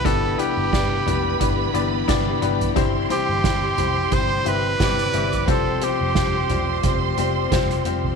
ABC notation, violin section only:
X:1
M:4/4
L:1/8
Q:"Swing 16ths" 1/4=88
K:C
V:1 name="Violin section"
[Bb]8 | [Cc']6 [dd']2 | [cc']8 |]